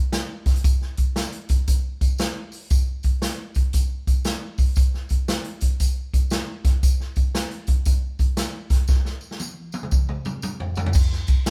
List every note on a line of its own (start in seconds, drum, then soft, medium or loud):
0.12 snare loud
0.12 closed hi-hat medium
0.12 tambourine medium
0.46 kick medium
0.46 snare soft
0.46 closed hi-hat medium
0.46 tambourine medium
0.56 closed hi-hat medium
0.64 kick loud
0.64 closed hi-hat medium
0.64 tambourine loud
0.81 snare soft
0.97 kick medium
0.97 closed hi-hat medium
0.97 tambourine soft
1.16 snare loud
1.16 closed hi-hat medium
1.16 tambourine medium
1.32 closed hi-hat soft
1.49 kick medium
1.49 closed hi-hat medium
1.49 tambourine medium
1.68 kick medium
1.68 closed hi-hat medium
1.68 tambourine medium
2.01 kick medium
2.01 closed hi-hat medium
2.01 tambourine medium
2.18 snare loud
2.18 closed hi-hat medium
2.18 tambourine medium
2.52 open hi-hat medium
2.52 tambourine medium
2.70 kick loud
2.70 closed hi-hat medium
2.70 tambourine loud
3.03 kick medium
3.03 closed hi-hat medium
3.03 tambourine soft
3.22 snare loud
3.22 closed hi-hat medium
3.22 tambourine medium
3.55 kick medium
3.55 closed hi-hat medium
3.55 tambourine medium
3.73 kick medium
3.73 closed hi-hat medium
3.73 tambourine medium
4.07 kick medium
4.07 closed hi-hat medium
4.07 tambourine medium
4.25 snare loud
4.25 closed hi-hat medium
4.25 tambourine medium
4.58 kick medium
4.58 open hi-hat medium
4.58 tambourine medium
4.76 kick loud
4.76 closed hi-hat medium
4.76 tambourine loud
4.94 snare soft
5.09 kick medium
5.09 closed hi-hat medium
5.09 tambourine soft
5.28 snare loud
5.28 closed hi-hat medium
5.28 tambourine medium
5.44 closed hi-hat soft
5.60 kick medium
5.60 closed hi-hat medium
5.60 tambourine medium
5.80 kick medium
5.80 closed hi-hat medium
5.80 tambourine medium
6.13 kick medium
6.13 closed hi-hat medium
6.13 tambourine medium
6.30 snare loud
6.30 closed hi-hat medium
6.30 tambourine medium
6.64 kick medium
6.64 snare soft
6.64 closed hi-hat medium
6.64 tambourine medium
6.83 kick loud
6.83 closed hi-hat medium
6.83 tambourine loud
7.00 snare soft
7.16 kick medium
7.16 closed hi-hat medium
7.16 tambourine soft
7.35 snare loud
7.35 closed hi-hat medium
7.35 tambourine medium
7.51 closed hi-hat soft
7.67 kick medium
7.67 closed hi-hat medium
7.67 tambourine medium
7.85 kick medium
7.85 closed hi-hat medium
7.85 tambourine medium
8.19 kick medium
8.19 closed hi-hat medium
8.19 tambourine medium
8.37 snare loud
8.37 closed hi-hat medium
8.37 tambourine medium
8.70 kick medium
8.70 snare soft
8.70 closed hi-hat medium
8.70 tambourine medium
8.88 kick loud
8.88 snare medium
8.88 tambourine medium
9.05 snare soft
9.21 tambourine soft
9.31 snare medium
9.40 high tom medium
9.40 tambourine medium
9.72 high tom medium
9.72 tambourine medium
9.83 mid tom medium
9.91 kick medium
9.91 tambourine medium
10.09 mid tom medium
10.25 mid tom medium
10.25 tambourine medium
10.42 mid tom medium
10.42 tambourine medium
10.60 floor tom medium
10.75 floor tom loud
10.75 tambourine medium
10.86 floor tom medium
10.93 kick loud
10.93 crash medium
10.93 tambourine loud
11.12 snare soft
11.27 kick medium
11.27 ride medium
11.27 tambourine medium
11.46 snare loud
11.46 ride medium
11.46 tambourine loud